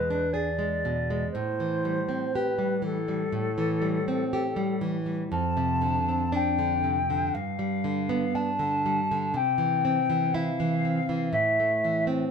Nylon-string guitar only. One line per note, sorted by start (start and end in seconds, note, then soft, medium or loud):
0.00 1.29 E2 soft
0.00 0.24 G#3 soft
0.10 0.49 D4 soft
0.34 0.73 G#4 soft
0.59 0.98 G#3 soft
0.85 1.24 B2 soft
1.10 1.34 G#3 soft
1.35 3.31 A2 soft
1.60 1.99 E3 soft
1.85 2.24 G3 soft
2.09 2.48 C4 soft
2.35 2.74 G4 soft
2.58 2.98 G3 soft
2.82 3.23 E3 soft
3.08 3.48 G3 soft
3.32 5.28 A2 soft
3.58 3.98 E3 soft
3.82 4.22 G3 soft
4.08 4.48 C4 soft
4.33 4.73 G4 soft
4.56 4.97 G3 soft
4.81 5.22 E3 soft
5.06 5.32 G3 soft
5.32 7.30 F2 medium
5.57 5.98 C3 soft
5.81 6.23 D3 soft
6.09 6.49 C4 soft
6.32 6.74 D4 soft
6.59 6.99 D3 soft
6.84 7.24 C3 soft
7.10 7.35 D3 soft
7.35 9.31 G2 soft
7.59 7.99 G3 soft
7.84 8.24 D3 soft
8.09 8.50 B3 soft
8.35 8.75 D4 soft
8.59 9.00 D3 soft
8.86 9.25 G3 soft
9.11 9.35 D3 soft
9.34 11.29 C3 medium
9.58 9.98 E3 soft
9.85 10.24 C4 soft
10.10 10.49 E3 soft
10.34 10.74 E4 soft
10.60 10.99 E3 soft
10.85 11.24 C4 soft
11.09 11.34 E3 soft
11.33 12.31 A2 medium
11.60 11.99 A3 soft
11.84 12.23 E3 soft
12.07 12.31 C4 soft